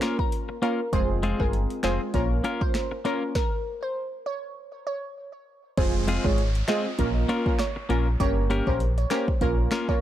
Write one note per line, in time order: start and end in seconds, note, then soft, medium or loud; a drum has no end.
0.00 0.56 A#3 medium
0.00 0.19 A#3 medium
0.00 0.56 C#4 medium
0.00 0.18 C#4 medium
0.00 0.56 F4 medium
0.00 0.18 F4 medium
0.00 0.56 A#4 loud
0.00 0.17 A#4 medium
0.00 finger snap medium
0.00 snare loud
0.00 closed hi-hat medium
0.18 0.28 A#4 medium
0.18 muted clean electric guitar stroke soft
0.18 kick loud
0.32 closed hi-hat medium
0.49 muted clean electric guitar stroke medium
0.62 0.79 A#3 medium
0.62 0.82 A#3 medium
0.62 0.82 C#4 medium
0.62 0.80 C#4 medium
0.62 0.82 F4 medium
0.62 0.80 F4 loud
0.62 0.74 A#4 medium
0.62 0.83 A#4 medium
0.62 0.80 A#4 loud
0.62 closed hi-hat medium
0.92 1.34 F1 loud
0.92 1.36 G#3 medium
0.92 1.36 C4 medium
0.92 1.36 F4 medium
0.92 1.36 G#4 loud
0.92 1.04 C5 loud
0.92 kick loud
0.92 closed hi-hat medium
1.23 1.40 G#3 medium
1.23 1.40 C4 medium
1.23 1.40 F4 loud
1.23 1.41 G#4 loud
1.23 closed hi-hat medium
1.40 1.67 G1 medium
1.40 1.80 G#3 medium
1.40 1.80 C4 medium
1.40 1.81 F4 medium
1.40 1.81 G#4 medium
1.40 1.49 A#4 medium
1.40 kick loud
1.53 closed hi-hat medium
1.70 closed hi-hat medium
1.83 1.99 F1 loud
1.83 2.12 G#3 medium
1.83 2.01 G#3 medium
1.83 2.12 C4 medium
1.83 2.01 C4 medium
1.83 2.12 F4 medium
1.83 2.01 F4 medium
1.83 2.12 G#4 medium
1.83 2.01 G#4 medium
1.83 1.95 C5 medium
1.83 finger snap medium
1.83 snare loud
1.83 closed hi-hat medium
2.14 2.41 A#1 loud
2.14 2.98 A#3 medium
2.14 2.98 C#4 medium
2.14 2.99 F4 medium
2.14 2.99 A#4 loud
2.14 2.25 C#5 medium
2.14 kick medium
2.14 closed hi-hat medium
2.44 2.61 A#3 medium
2.44 2.61 C#4 loud
2.44 2.62 F4 medium
2.44 2.62 A#4 loud
2.44 closed hi-hat medium
2.61 2.70 C5 medium
2.61 kick loud
2.74 finger snap medium
2.74 snare loud
2.74 closed hi-hat medium
2.91 muted clean electric guitar stroke medium
3.05 3.22 A#3 medium
3.05 3.33 A#3 medium
3.05 3.33 C#4 medium
3.05 3.22 C#4 medium
3.05 3.33 F4 medium
3.05 3.22 F4 medium
3.05 3.16 A#4 medium
3.05 3.33 A#4 medium
3.05 3.22 A#4 medium
3.05 closed hi-hat medium
3.35 3.47 A#4 loud
3.35 kick loud
3.35 snare loud
3.83 3.92 C5 medium
4.26 4.38 C#5 medium
4.87 4.98 C#5 medium
5.77 6.19 F1 loud
5.77 6.21 G#3 medium
5.77 6.21 C4 medium
5.77 6.21 F4 medium
5.77 6.21 G#4 loud
5.77 5.98 C5 loud
5.77 kick loud
5.77 closed hi-hat medium
5.77 downlifter medium
6.08 6.25 G#3 medium
6.08 6.25 C4 medium
6.08 6.25 F4 loud
6.08 6.25 G#4 loud
6.08 closed hi-hat medium
6.24 6.63 G#1 loud
6.24 6.42 G#3 medium
6.24 6.42 C4 medium
6.24 6.42 F4 medium
6.24 6.42 G#4 medium
6.24 6.45 C#5 medium
6.24 kick loud
6.38 closed hi-hat medium
6.55 closed hi-hat medium
6.68 6.85 G#3 medium
6.68 6.88 G#3 medium
6.68 6.88 C4 medium
6.68 6.86 C4 loud
6.68 6.88 F4 medium
6.68 6.86 F4 loud
6.68 6.89 G#4 medium
6.68 6.86 G#4 loud
6.68 6.89 D#5 medium
6.68 finger snap medium
6.68 snare loud
6.68 closed hi-hat medium
6.98 7.25 A#1 loud
6.98 7.42 A#3 loud
6.98 7.42 C#4 medium
6.98 7.42 F4 medium
6.98 7.42 A#4 loud
6.98 kick medium
6.98 closed hi-hat medium
7.29 7.46 A#3 loud
7.29 7.46 C#4 medium
7.29 7.46 F4 loud
7.29 7.47 A#4 loud
7.29 closed hi-hat medium
7.46 7.63 A#3 medium
7.46 7.63 C#4 medium
7.46 7.63 F4 medium
7.46 7.63 A#4 medium
7.46 kick loud
7.59 8.04 C#5 medium
7.59 finger snap medium
7.59 snare loud
7.59 closed hi-hat medium
7.76 muted clean electric guitar stroke medium
7.89 8.16 A#1 medium
7.89 8.07 A#3 medium
7.89 8.09 A#3 medium
7.89 8.10 C#4 medium
7.89 8.07 C#4 medium
7.89 8.10 F4 medium
7.89 8.07 F4 loud
7.89 8.10 A#4 medium
7.89 8.07 A#4 medium
7.89 closed hi-hat medium
8.20 8.61 G1 loud
8.20 8.63 A#3 loud
8.20 8.63 C#4 medium
8.20 8.63 G4 medium
8.20 8.64 A#4 loud
8.20 8.31 C#5 loud
8.20 kick loud
8.20 closed hi-hat medium
8.50 8.67 A#3 medium
8.50 8.67 C#4 medium
8.50 8.68 G4 medium
8.50 8.68 A#4 loud
8.50 closed hi-hat medium
8.67 9.05 A#1 loud
8.67 8.84 A#3 medium
8.67 8.84 C#4 medium
8.67 8.84 G4 medium
8.67 8.85 A#4 medium
8.67 8.76 C5 medium
8.67 kick loud
8.80 closed hi-hat medium
8.98 9.07 C#5 medium
8.98 closed hi-hat medium
9.10 9.28 A#3 medium
9.10 9.31 A#3 medium
9.10 9.31 C#4 medium
9.10 9.27 C#4 medium
9.10 9.31 G4 medium
9.10 9.27 G4 medium
9.10 9.31 A#4 medium
9.10 9.27 A#4 medium
9.10 9.23 C5 medium
9.10 finger snap medium
9.10 snare loud
9.10 closed hi-hat medium
9.28 muted clean electric guitar stroke soft
9.28 kick loud
9.41 9.68 A#1 loud
9.41 9.84 A#3 loud
9.41 9.84 C#4 medium
9.41 9.85 F4 medium
9.41 9.85 A#4 loud
9.41 9.53 A#4 medium
9.41 kick medium
9.41 closed hi-hat medium
9.71 9.89 A#3 medium
9.71 9.88 C#4 medium
9.71 9.88 F4 medium
9.71 9.87 A#4 medium
9.71 finger snap medium
9.71 snare loud
9.71 closed hi-hat medium
9.88 10.01 A#3 medium
9.88 10.01 C#4 medium
9.88 10.01 F4 medium
9.88 10.01 A#4 medium
9.88 9.98 C#5 medium
9.88 muted clean electric guitar stroke soft
9.88 kick loud